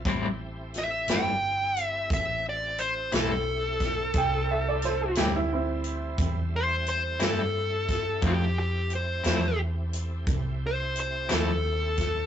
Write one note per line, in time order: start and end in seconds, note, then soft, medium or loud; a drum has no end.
0.05 1.05 A1 medium
0.05 0.26 A2 medium
0.05 0.26 G3 medium
0.05 4.11 A3 medium
0.05 0.26 C4 medium
0.05 4.12 C4 medium
0.05 0.26 E4 medium
0.05 4.12 E4 medium
0.05 4.11 G4 medium
0.05 kick medium
0.05 closed hi-hat medium
0.74 snare soft
0.74 closed hi-hat soft
0.78 1.09 E5 medium
1.07 2.07 G1 medium
1.07 1.30 A2 medium
1.07 1.30 G3 medium
1.07 1.29 C4 medium
1.07 1.29 E4 medium
1.07 1.84 G5 medium
1.07 snare loud
1.07 closed hi-hat medium
1.77 closed hi-hat medium
1.84 2.09 E5 medium
2.10 3.09 A1 medium
2.10 2.45 E5 medium
2.10 kick loud
2.10 closed hi-hat medium
2.49 2.80 D5 medium
2.78 3.12 C5 medium
2.78 closed hi-hat medium
3.12 4.12 B1 medium
3.12 3.33 A2 medium
3.12 3.33 G3 soft
3.12 3.32 C4 medium
3.12 3.33 E4 medium
3.12 5.14 A4 medium
3.12 snare medium
3.12 closed hi-hat medium
3.80 kick medium
3.80 snare soft
3.80 closed hi-hat soft
4.13 5.13 C2 medium
4.13 8.20 G3 medium
4.13 8.20 A3 medium
4.13 8.20 C4 medium
4.13 8.19 E4 medium
4.13 4.49 G5 medium
4.13 kick medium
4.13 closed hi-hat medium
4.51 4.66 E5 medium
4.68 4.83 D5 medium
4.82 5.00 C5 medium
4.82 snare soft
4.82 closed hi-hat medium
5.01 5.16 A4 medium
5.15 6.16 D2 medium
5.15 5.38 A2 medium
5.15 5.38 G3 medium
5.15 5.38 C4 medium
5.15 5.37 E4 medium
5.15 5.33 G4 medium
5.15 snare loud
5.15 closed hi-hat medium
5.36 5.51 E4 medium
5.53 6.33 C4 medium
5.53 6.35 E4 medium
5.84 closed hi-hat medium
6.18 7.18 E2 medium
6.18 kick loud
6.18 closed hi-hat medium
6.56 6.88 C5 medium
6.86 7.21 C5 medium
6.86 closed hi-hat soft
7.20 8.20 G2 medium
7.20 7.41 A2 soft
7.20 7.41 G3 medium
7.20 7.41 C4 medium
7.20 7.41 E4 medium
7.20 snare loud
7.20 closed hi-hat medium
7.24 8.22 A4 medium
7.89 kick medium
7.89 snare soft
7.89 closed hi-hat medium
8.21 9.22 F2 medium
8.21 8.43 F3 medium
8.21 8.43 A3 medium
8.21 12.26 A3 medium
8.21 8.43 C4 medium
8.21 12.26 C4 medium
8.21 8.44 E4 medium
8.21 12.26 E4 medium
8.21 12.26 G4 medium
8.21 kick loud
8.21 closed hi-hat medium
8.27 8.58 G4 medium
8.59 8.92 G4 medium
8.90 closed hi-hat soft
8.95 9.60 C5 medium
9.23 10.25 E2 medium
9.23 9.46 F3 medium
9.23 9.45 A3 medium
9.23 9.45 C4 medium
9.23 9.45 E4 medium
9.23 snare loud
9.23 closed hi-hat medium
9.93 closed hi-hat medium
10.27 11.27 C2 medium
10.27 kick loud
10.27 closed hi-hat medium
10.67 10.98 C5 medium
10.96 closed hi-hat soft
11.00 11.32 C5 medium
11.29 12.26 D#2 medium
11.29 11.50 F3 soft
11.29 11.50 A3 medium
11.29 11.50 C4 medium
11.29 11.50 E4 medium
11.29 snare loud
11.29 closed hi-hat medium
11.35 12.26 A4 medium
11.97 kick medium
11.97 snare soft
11.97 closed hi-hat medium